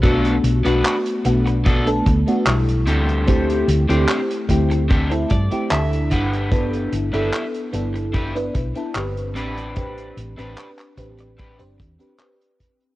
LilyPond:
<<
  \new Staff \with { instrumentName = "Clean electric guitar" } { \time 4/4 \key a \dorian \tempo 4 = 74 << { r1 | r2 r8 d''8 e''8 fis''8 | r1 | r1 | } \\ { <b d' fis' a'>8 r16 <b d' fis' b'>16 r4 <b d' fis' a'>16 r4 r16 <c' d' g' a'>8~ | <c' d' g' a'>8 r16 <c' d' g' c''>16 r4 <c' d' g' a'>16 r4 r16 <d' e' g' b'>8~ | <d' e' g' b'>8 r16 <d' e' g' b'>16 r4 <d' e' g' b'>16 r4 r16 <c' d' g' b'>8~ | <c' d' g' b'>8 r16 <c' d' g' b'>16 r4 <c' d' g' b'>16 r4. r16 | } >> }
  \new Staff \with { instrumentName = "FM electric piano" } { \time 4/4 \key a \dorian <a b d' fis'>8. <a b d' fis'>8. <a b d' fis'>8. <a b d' a'>16 r16 <a b d' fis'>16 <g a e'>4 | <a c' e' g'>8. <a c' e' g'>8. <a c' e' g'>8. <a c' e' a'>16 r16 <a c' e' g'>16 <d' e' a'>4 | <b d' e' a'>8. <b d' e' a'>8. <b d' e' a'>8. <b d' e' b'>16 r16 <b d' e' a'>16 <c' d' g' b'>4 | <c' d' g' b'>8. <c' d' g' b'>8. <c' d' g' b'>8. <c' d' g' c''>16 r16 <c' d' g' b'>16 <c' d' g' b'>4 | }
  \new Staff \with { instrumentName = "Fingered electric bass" } { \clef bass \time 4/4 \key a \dorian b,,8 b,,16 b,,16 r8 b,,4 d,16 r16 b,,8 d,8~ | d,8 d,16 d,16 r8 d,4 g,16 r16 d,8 g,,8~ | g,,8 g,,16 g,,16 r8 g,,4 b,,16 r16 g,,8 a,,8~ | a,,8 a,,16 a,,16 r8 a,,8. g,,16 e,16 r4 r16 | }
  \new DrumStaff \with { instrumentName = "Drums" } \drummode { \time 4/4 <hh bd>16 hh16 hh16 hh16 <hc hh>16 hh16 hh16 hh16 <hh bd>16 hh16 <hh bd>16 hh16 <hc hh>16 hh16 hh16 hh16 | <hh bd>16 hh16 hh16 hh16 <hc hh>16 hh16 <hh bd>16 hh16 <hh bd>16 hh16 <hh bd>16 hh16 <hc hh>16 hh16 <hh bd>16 hh16 | <hh bd>16 hh16 hh16 hh16 <hc hh>16 hh16 hh16 hh16 <hh bd>16 hh16 <hh bd>16 hh16 <hc hh>16 hh16 hh16 hh16 | <hh bd>16 hh16 hh16 hh16 <hc hh>16 <hc hh>16 <hh bd>16 hh16 <hh bd>16 hh16 <hh bd>16 hh16 <hc hh>16 hh16 <hh bd>16 hh16 | }
>>